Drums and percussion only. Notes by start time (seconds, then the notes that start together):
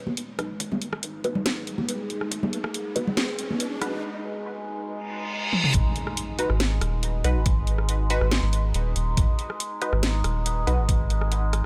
0.07 high conga
0.17 closed hi-hat
0.39 cross-stick, closed hi-hat
0.60 kick, closed hi-hat
0.72 high conga, low conga
0.82 closed hi-hat
0.93 kick, cross-stick
1.03 closed hi-hat
1.24 closed hi-hat, high conga
1.35 low conga
1.46 snare, closed hi-hat
1.67 closed hi-hat
1.78 high conga
1.89 closed hi-hat
2.10 closed hi-hat
2.21 cross-stick
2.31 kick, closed hi-hat
2.43 high conga, low conga
2.53 closed hi-hat
2.64 kick, cross-stick
2.74 closed hi-hat
2.96 closed hi-hat, high conga
3.07 low conga
3.17 snare, closed hi-hat
3.39 closed hi-hat
3.51 high conga
3.60 closed hi-hat
3.82 cross-stick, closed hi-hat
5.53 high tom
5.64 mid tom
5.74 kick, closed hi-hat
5.96 closed hi-hat
6.07 cross-stick
6.17 closed hi-hat
6.39 closed hi-hat
6.50 cross-stick
6.60 snare, closed hi-hat
6.81 cross-stick, closed hi-hat
7.03 closed hi-hat
7.24 closed hi-hat
7.46 kick, closed hi-hat
7.67 closed hi-hat
7.78 cross-stick
7.89 closed hi-hat
8.10 closed hi-hat
8.21 cross-stick
8.32 snare, closed hi-hat
8.53 closed hi-hat
8.74 closed hi-hat
8.96 closed hi-hat
9.17 kick, closed hi-hat
9.39 closed hi-hat
9.50 cross-stick
9.60 closed hi-hat
9.82 closed hi-hat
9.93 cross-stick
10.03 snare, closed hi-hat
10.24 cross-stick, closed hi-hat
10.46 closed hi-hat
10.67 closed hi-hat
10.89 kick, closed hi-hat
11.10 closed hi-hat
11.21 cross-stick
11.32 closed hi-hat
11.53 cross-stick, closed hi-hat